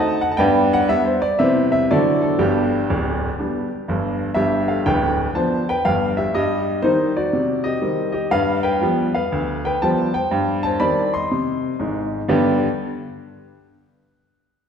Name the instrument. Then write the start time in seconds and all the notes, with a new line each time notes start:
upright piano
Already playing: A3 C4 D#4 D#5 F#5 A5
0.21 F#5
0.31 A5
0.37 G2 B3 B4 D5 G5
0.73 F#5
0.80 D5
0.89 G3 B3 D4 E5
1.05 C5
1.22 D5
1.39 C3 G3 B3 E4 B4 C5 E5
1.72 E5
1.91 D3 F#3 C4 E4 F#4 A4 D5
2.22 A4
2.39 G1 G2 B3 D4 G4
2.90 D1 D2
3.39 G3 B3 D4
3.88 G1 G2
4.34 G1 G2 G4 E5
4.68 A4 F5
4.86 D1 D2 B4 G5
5.35 F3 B3 D4 C5 A5
5.69 B4 G5
5.85 G1 G2 B4 F5
6.17 G4 E5
6.34 G2 G4 D#5
6.82 D#3 G3 C4 D#4 C5
7.17 F#4 D5
7.33 C3
7.64 G4 D#5
7.81 D#3 G3 C4
8.12 G4 D#5
8.31 G2 B4 F5
8.63 B4 G5
8.81 F3 G3 B3
9.14 B4 F5
9.32 D2
9.65 B4 G5
9.82 F3 G3 B3 C5 A5
10.14 C5 G5
10.31 G2
10.63 C5 A5
10.80 D#3 G3 C4 D5 B5
11.14 D#5 C6
11.31 C3
11.79 G#1 G#2
12.28 G2 D3 B3 D4 G4 B4 G5